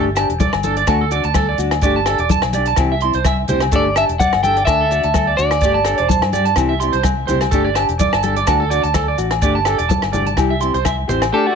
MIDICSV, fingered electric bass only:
0, 0, Header, 1, 2, 480
1, 0, Start_track
1, 0, Tempo, 475059
1, 1845, Time_signature, 4, 2, 24, 8
1, 11672, End_track
2, 0, Start_track
2, 0, Title_t, "Fingered electric bass"
2, 0, Program_c, 0, 33
2, 0, Note_on_c, 0, 31, 87
2, 251, Note_off_c, 0, 31, 0
2, 294, Note_on_c, 0, 28, 72
2, 507, Note_off_c, 0, 28, 0
2, 535, Note_on_c, 0, 31, 77
2, 843, Note_off_c, 0, 31, 0
2, 882, Note_on_c, 0, 38, 91
2, 1211, Note_off_c, 0, 38, 0
2, 1256, Note_on_c, 0, 38, 68
2, 1563, Note_off_c, 0, 38, 0
2, 1597, Note_on_c, 0, 38, 88
2, 1812, Note_off_c, 0, 38, 0
2, 1840, Note_on_c, 0, 31, 89
2, 2170, Note_off_c, 0, 31, 0
2, 2211, Note_on_c, 0, 28, 75
2, 2425, Note_off_c, 0, 28, 0
2, 2452, Note_on_c, 0, 35, 79
2, 2761, Note_off_c, 0, 35, 0
2, 2801, Note_on_c, 0, 36, 90
2, 3130, Note_off_c, 0, 36, 0
2, 3173, Note_on_c, 0, 36, 71
2, 3482, Note_off_c, 0, 36, 0
2, 3519, Note_on_c, 0, 36, 83
2, 3733, Note_off_c, 0, 36, 0
2, 3755, Note_on_c, 0, 31, 80
2, 4087, Note_off_c, 0, 31, 0
2, 4133, Note_on_c, 0, 28, 78
2, 4346, Note_off_c, 0, 28, 0
2, 4376, Note_on_c, 0, 31, 78
2, 4683, Note_off_c, 0, 31, 0
2, 4721, Note_on_c, 0, 38, 87
2, 5050, Note_off_c, 0, 38, 0
2, 5094, Note_on_c, 0, 38, 74
2, 5402, Note_off_c, 0, 38, 0
2, 5442, Note_on_c, 0, 38, 84
2, 5655, Note_off_c, 0, 38, 0
2, 5671, Note_on_c, 0, 31, 88
2, 6005, Note_off_c, 0, 31, 0
2, 6057, Note_on_c, 0, 28, 77
2, 6269, Note_off_c, 0, 28, 0
2, 6293, Note_on_c, 0, 43, 73
2, 6602, Note_off_c, 0, 43, 0
2, 6633, Note_on_c, 0, 36, 86
2, 6966, Note_off_c, 0, 36, 0
2, 7009, Note_on_c, 0, 36, 69
2, 7319, Note_off_c, 0, 36, 0
2, 7359, Note_on_c, 0, 36, 91
2, 7574, Note_off_c, 0, 36, 0
2, 7597, Note_on_c, 0, 31, 84
2, 7929, Note_off_c, 0, 31, 0
2, 7971, Note_on_c, 0, 28, 76
2, 8186, Note_off_c, 0, 28, 0
2, 8211, Note_on_c, 0, 31, 80
2, 8521, Note_off_c, 0, 31, 0
2, 8558, Note_on_c, 0, 38, 87
2, 8889, Note_off_c, 0, 38, 0
2, 8928, Note_on_c, 0, 38, 77
2, 9239, Note_off_c, 0, 38, 0
2, 9279, Note_on_c, 0, 33, 96
2, 9494, Note_off_c, 0, 33, 0
2, 9518, Note_on_c, 0, 31, 91
2, 9849, Note_off_c, 0, 31, 0
2, 9893, Note_on_c, 0, 28, 73
2, 10107, Note_off_c, 0, 28, 0
2, 10139, Note_on_c, 0, 31, 75
2, 10445, Note_off_c, 0, 31, 0
2, 10481, Note_on_c, 0, 36, 88
2, 10811, Note_off_c, 0, 36, 0
2, 10851, Note_on_c, 0, 36, 77
2, 11161, Note_off_c, 0, 36, 0
2, 11203, Note_on_c, 0, 33, 81
2, 11416, Note_off_c, 0, 33, 0
2, 11672, End_track
0, 0, End_of_file